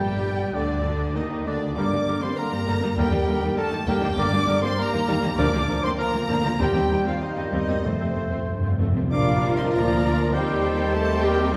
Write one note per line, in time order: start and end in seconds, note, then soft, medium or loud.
0.00 0.55 G1 medium
0.00 0.55 G2 medium
0.00 0.54 G3 medium
0.00 0.54 G4 medium
0.00 0.54 G5 medium
0.00 0.54 G5 loud
0.00 0.56 G5 medium
0.54 1.14 D2 medium
0.54 1.15 D3 medium
0.54 1.17 D3 medium
0.54 1.16 D3 medium
0.54 1.14 D4 medium
0.54 1.15 D5 medium
0.54 1.16 D5 medium
0.54 1.15 D5 medium
1.15 1.46 D#2 medium
1.15 1.46 D#3 medium
1.15 1.29 D#3 medium
1.15 1.46 D#4 medium
1.15 1.24 D#5 medium
1.15 1.46 D#5 medium
1.46 1.77 D2 medium
1.46 1.76 D3 medium
1.46 1.60 D3 medium
1.46 1.55 D3 medium
1.46 1.76 D4 medium
1.46 1.61 D4 medium
1.46 1.76 D5 medium
1.46 1.77 D5 medium
1.46 1.61 D5 medium
1.75 1.83 G1 medium
1.75 1.82 G2 medium
1.75 1.91 D3 medium
1.75 1.82 G3 medium
1.75 1.83 G3 medium
1.75 1.82 A#3 medium
1.75 1.83 A#3 medium
1.75 2.20 D4 medium
1.75 1.92 A#4 medium
1.75 2.24 D5 medium
1.75 2.22 D6 medium
1.75 2.21 D6 loud
1.91 1.97 G2 medium
1.91 1.99 G3 medium
1.91 1.98 A#3 medium
1.91 1.99 A#3 medium
1.91 1.98 D4 soft
2.06 2.13 G1 medium
2.06 2.13 G2 medium
2.06 2.21 D3 medium
2.06 2.13 G3 medium
2.06 2.13 A#3 medium
2.06 2.13 D4 medium
2.06 2.12 G4 medium
2.06 2.22 A#4 medium
2.20 2.28 G2 medium
2.20 2.27 G3 medium
2.20 2.28 G3 medium
2.20 2.27 A#3 medium
2.20 2.28 A#3 medium
2.20 2.37 C4 medium
2.20 2.40 C5 medium
2.20 2.37 C6 loud
2.20 2.29 C6 medium
2.35 2.51 D3 medium
2.35 2.97 A#3 medium
2.35 2.98 A#4 medium
2.35 2.52 A#4 medium
2.35 2.96 A#5 medium
2.35 2.98 A#5 loud
2.51 2.58 G2 medium
2.51 2.59 G3 medium
2.51 2.59 A#3 medium
2.51 2.57 D4 medium
2.51 2.57 G4 medium
2.66 2.74 G1 medium
2.66 2.73 G2 loud
2.66 2.81 D3 medium
2.66 2.72 G3 medium
2.66 2.73 G3 medium
2.66 2.72 A#3 medium
2.66 2.73 A#3 medium
2.66 2.82 A#4 medium
2.80 2.88 G2 medium
2.80 2.89 G3 medium
2.80 2.87 A#3 medium
2.80 2.89 A#3 medium
2.80 2.87 D4 medium
2.95 3.03 D#2 medium
2.95 3.04 D#2 loud
2.95 3.11 D3 medium
2.95 3.56 G3 loud
2.95 3.04 G3 medium
2.95 3.02 A#3 medium
2.95 3.04 A#3 medium
2.95 3.02 D4 loud
2.95 3.56 G4 loud
2.95 3.12 A#4 medium
2.95 3.57 G5 loud
3.11 3.18 D#2 medium
3.11 3.18 G3 medium
3.11 3.19 A#3 medium
3.11 3.17 D4 medium
3.11 3.17 D#4 medium
3.27 3.33 D#2 medium
3.27 3.34 D#2 medium
3.27 3.41 D3 medium
3.27 3.34 G3 medium
3.27 3.34 A#3 medium
3.27 3.33 D#4 medium
3.27 3.33 G4 medium
3.27 3.43 A#4 medium
3.41 3.47 D#2 loud
3.41 3.49 G3 medium
3.41 3.48 A#3 medium
3.41 3.49 A#3 medium
3.41 3.47 D4 medium
3.57 3.71 D3 medium
3.57 3.87 A3 medium
3.57 3.71 A4 loud
3.57 3.71 A#4 medium
3.57 3.87 A5 loud
3.57 3.65 A5 loud
3.71 3.78 D#2 medium
3.71 3.79 G3 medium
3.71 3.79 A#3 medium
3.71 3.78 D#4 medium
3.71 3.78 G4 medium
3.86 3.93 D#2 loud
3.86 3.94 D#2 medium
3.86 4.01 D3 medium
3.86 4.01 G3 medium
3.86 3.94 G3 loud
3.86 3.92 A#3 loud
3.86 3.94 A#3 loud
3.86 3.93 D4 medium
3.86 4.17 G4 loud
3.86 4.02 A#4 medium
3.86 3.94 G5 loud
3.86 4.18 G5 loud
4.01 4.09 D#2 medium
4.01 4.09 G3 medium
4.01 4.09 A#3 medium
4.01 4.08 D4 medium
4.01 4.07 D#4 medium
4.17 4.24 G1 loud
4.17 4.24 G2 loud
4.17 4.31 D3 medium
4.17 4.23 G3 loud
4.17 4.24 G3 medium
4.17 4.23 A#3 loud
4.17 4.24 A#3 loud
4.17 4.62 D4 loud
4.17 4.32 A#4 medium
4.17 4.67 D5 loud
4.17 4.62 D6 loud
4.17 4.63 D6 loud
4.32 4.39 G2 medium
4.32 4.38 G3 medium
4.32 4.38 A#3 medium
4.32 4.39 D4 medium
4.47 4.54 G1 medium
4.47 4.54 G2 medium
4.47 4.61 D3 medium
4.47 4.53 G3 medium
4.47 4.53 A#3 medium
4.47 4.53 D4 medium
4.47 4.53 G4 medium
4.47 4.62 A#4 medium
4.62 4.69 G2 loud
4.62 4.68 G3 loud
4.62 4.69 G3 loud
4.62 4.68 A#3 medium
4.62 4.69 C4 medium
4.62 4.80 C5 loud
4.62 4.68 C6 medium
4.62 4.78 C6 loud
4.76 4.92 G3 medium
4.76 5.38 A#3 loud
4.76 4.92 A#4 medium
4.76 5.38 A#4 loud
4.76 5.36 A#5 loud
4.76 5.39 A#5 loud
4.92 4.99 D#2 medium
4.92 4.98 G3 medium
4.92 4.98 A#3 medium
4.92 4.98 D#4 medium
4.92 4.98 A#4 medium
5.07 5.14 D#2 loud
5.07 5.13 G3 loud
5.07 5.14 G3 loud
5.07 5.22 G3 medium
5.07 5.13 A#3 loud
5.07 5.14 D#4 loud
5.07 5.22 A#4 medium
5.21 5.29 D#2 medium
5.21 5.28 G3 medium
5.21 5.28 A#3 medium
5.21 5.29 A#3 medium
5.21 5.29 G4 medium
5.37 5.44 D2 loud
5.37 5.45 D2 loud
5.37 5.44 F3 loud
5.37 5.52 F3 medium
5.37 5.43 A#3 loud
5.37 5.44 A#3 loud
5.37 5.84 D4 loud
5.37 5.45 D4 loud
5.37 5.52 A#4 medium
5.37 5.85 D5 loud
5.37 5.84 D6 loud
5.53 5.60 D2 medium
5.53 5.59 F3 medium
5.53 5.59 A#3 medium
5.53 5.60 D4 medium
5.53 5.60 F4 medium
5.68 5.75 D2 medium
5.68 5.74 F3 medium
5.68 5.83 F3 medium
5.68 5.74 A#3 medium
5.68 5.76 F4 medium
5.68 5.83 A#4 medium
5.68 5.76 A#4 medium
5.83 5.89 D2 loud
5.83 5.90 F3 medium
5.83 5.90 A#3 medium
5.83 5.90 A#3 loud
5.83 5.99 C4 loud
5.83 5.91 D4 medium
5.83 5.98 C5 loud
5.83 5.89 C6 medium
5.83 5.90 C6 loud
5.98 6.13 F3 medium
5.98 6.59 A#3 loud
5.98 6.12 A#4 medium
5.98 6.38 A#4 loud
5.98 6.58 A#5 loud
5.98 6.59 A#5 loud
6.13 6.20 D2 medium
6.13 6.19 F3 medium
6.13 6.19 A#3 medium
6.13 6.22 F4 medium
6.13 6.21 A#4 medium
6.29 6.35 D2 loud
6.29 6.36 D2 loud
6.29 6.35 F3 loud
6.29 6.44 F3 medium
6.29 6.35 A#3 medium
6.29 6.36 A#3 medium
6.29 6.36 D4 loud
6.29 6.43 A#4 medium
6.43 6.50 D2 medium
6.43 6.50 F3 medium
6.43 6.49 A#3 medium
6.43 6.52 D4 medium
6.43 6.52 F4 medium
6.59 6.66 D#2 loud
6.59 6.66 G3 medium
6.59 7.06 G3 loud
6.59 7.18 G3 medium
6.59 6.66 C4 medium
6.59 7.08 G4 loud
6.59 7.18 C5 medium
6.59 7.06 G5 loud
6.59 7.07 G5 loud
6.74 6.81 D#2 medium
6.74 6.81 G3 medium
6.74 6.81 C4 medium
6.74 6.82 C4 medium
6.74 6.82 D#4 medium
6.90 6.96 D#2 medium
6.90 6.97 D#2 medium
6.90 6.97 G3 medium
6.90 6.97 C4 medium
6.90 6.98 D#4 medium
6.90 6.98 G4 medium
7.05 7.12 D#2 medium
7.05 7.14 F3 medium
7.05 7.11 G3 medium
7.05 7.13 G3 medium
7.05 7.11 C4 medium
7.05 7.13 C4 medium
7.05 7.24 F4 medium
7.05 7.22 F5 medium
7.22 7.84 D#3 medium
7.22 7.87 G3 medium
7.22 7.87 D#4 medium
7.22 7.85 C5 medium
7.22 7.31 D#5 medium
7.22 7.84 D#5 medium
7.31 7.39 F5 medium
7.37 7.44 D#2 medium
7.37 7.43 G3 medium
7.37 7.43 C4 medium
7.37 7.44 D#4 medium
7.37 7.44 G4 medium
7.37 7.47 D#5 medium
7.47 7.55 F5 medium
7.52 7.59 D#2 medium
7.52 7.60 D#2 medium
7.52 7.59 G3 medium
7.52 7.59 C4 medium
7.52 7.86 D#5 loud
7.68 7.76 D#2 medium
7.68 7.75 G3 medium
7.68 7.74 C4 medium
7.68 7.75 C4 medium
7.68 7.76 D#4 medium
7.83 7.92 F1 medium
7.83 7.92 F2 medium
7.83 7.93 F2 soft
7.83 8.47 C3 medium
7.83 7.90 A3 medium
7.83 7.91 A3 medium
7.83 8.80 A3 medium
7.83 7.90 C4 medium
7.83 8.49 C4 medium
7.83 8.49 C5 medium
7.83 8.79 C5 medium
7.94 8.00 F2 soft
8.00 8.07 F2 medium
8.00 8.09 F2 soft
8.00 8.07 A3 soft
8.00 8.08 A3 medium
8.00 8.06 C4 medium
8.00 8.07 C4 medium
8.10 8.16 F2 soft
8.16 8.24 F1 medium
8.16 8.23 F2 medium
8.16 8.24 F2 soft
8.16 8.23 A3 medium
8.16 8.23 C4 medium
8.16 8.23 F4 medium
8.25 8.31 F2 medium
8.32 8.38 F2 medium
8.32 8.39 F2 medium
8.32 8.39 A3 medium
8.32 8.38 A3 medium
8.32 8.38 C4 medium
8.40 8.46 F2 medium
8.48 8.54 F2 medium
8.48 8.78 G2 medium
8.56 8.62 F2 medium
8.63 8.69 F2 medium
8.63 8.70 A3 medium
8.63 8.70 C4 medium
8.63 8.71 C4 medium
8.63 8.71 F4 medium
8.71 8.77 F2 medium
8.79 8.87 F1 medium
8.79 8.86 F2 medium
8.79 9.11 A2 medium
8.79 8.85 A3 medium
8.79 8.87 A3 medium
8.79 8.86 C4 medium
8.87 8.93 F2 medium
8.94 9.01 F2 loud
8.94 9.02 A3 medium
8.94 9.03 A3 medium
8.94 9.02 C4 medium
8.94 9.03 C4 soft
9.02 9.09 F2 loud
9.10 9.68 A#1 medium
9.10 10.00 A#2 loud
9.10 10.35 F3 medium
9.10 9.68 G3 medium
9.10 10.29 A#3 medium
9.10 9.54 D4 loud
9.10 9.69 D4 medium
9.10 10.30 F4 medium
9.10 10.36 A#4 medium
9.10 10.30 A#4 medium
9.10 9.54 D5 medium
9.10 9.54 F5 loud
9.10 9.54 D6 loud
9.57 9.65 C4 medium
9.57 9.64 C5 medium
9.57 9.72 D#5 medium
9.57 9.63 C6 loud
9.71 10.34 D2 medium
9.71 10.01 F3 medium
9.71 10.33 A#3 medium
9.71 10.34 F4 medium
9.71 10.35 A#4 medium
9.71 10.33 D5 loud
9.71 10.32 A#5 loud
10.02 10.10 F3 medium
10.32 11.52 D#2 medium
10.32 11.54 D#3 medium
10.32 11.51 G3 medium
10.32 10.92 G3 loud
10.32 10.92 C4 medium
10.32 10.93 D#4 medium
10.32 10.63 G4 medium
10.32 11.52 G4 medium
10.32 10.96 G4 loud
10.32 10.93 G4 medium
10.32 10.93 C5 loud
10.32 11.54 C5 medium
10.32 10.93 G5 loud
10.64 10.93 A4 medium
10.93 11.25 A3 loud
10.93 11.53 C4 medium
10.93 11.54 C4 medium
10.93 11.54 G4 loud
10.93 11.54 G4 medium
10.93 11.26 A4 medium
10.93 11.24 C5 loud
10.93 11.25 A5 loud
11.24 11.38 G3 loud
11.24 11.53 G4 loud
11.24 11.55 A#4 loud
11.24 11.55 G5 loud